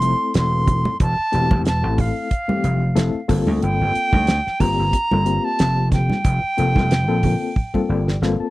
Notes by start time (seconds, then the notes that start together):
Already playing: F1 C6
0.02 A3 C4 E4 A4, closed hi-hat
0.34 E1 C6, snare, closed hi-hat
0.67 kick, closed hi-hat, low conga
0.85 high conga
1.00 E1 A5, kick, closed hi-hat
1.19 muted slap bass stroke
1.32 E1 A3 C4 E4 G4, closed hi-hat
1.51 E1, kick, high conga
1.65 A5, snare, closed hi-hat
1.83 A1 A3 C4 E4 A4
1.98 F5, kick, open hi-hat, low conga
2.31 kick, closed hi-hat
2.48 E3 A3 C4 G4, muted slap bass stroke, high conga
2.64 F1, closed hi-hat
2.95 F1 A3 C4 E4 A4, snare, closed hi-hat
3.15 muted slap bass stroke
3.28 G1 A#3 C4 F4 A4, kick, open hi-hat, low conga
3.47 D2, high conga
3.62 G1 G5, closed hi-hat
3.81 G1
3.95 muted slap bass stroke, closed hi-hat
4.13 D2, kick, high conga
4.27 snare, closed hi-hat
4.47 muted slap bass stroke, snare
4.60 G1 A#3 C4 F4 G4 A#5, kick, open hi-hat, low conga
4.79 G1
4.93 kick, closed hi-hat
5.11 G1 A#3 C4 F4 A4, high conga
5.25 A#3 C4 F4 G4, closed hi-hat
5.45 A5
5.59 F1, snare, closed hi-hat
5.92 G5, kick, snare, closed hi-hat, low conga
6.10 snare, high conga
6.25 F1, kick, closed hi-hat
6.44 muted slap bass stroke
6.57 F1 A#3 C4 F4 A4, closed hi-hat
6.76 F1, kick, snare, high conga
6.91 snare, closed hi-hat
7.08 A#1 A#3 C4 F4 A4
7.23 kick, open hi-hat, low conga
7.56 kick, high tom
7.74 A#3 C4 F4 A4, muted slap bass stroke, kick, high conga
7.89 G1 D5
8.08 snare
8.22 G1 A#3 C4 F4 A4 F5, snare
8.40 A5, muted slap bass stroke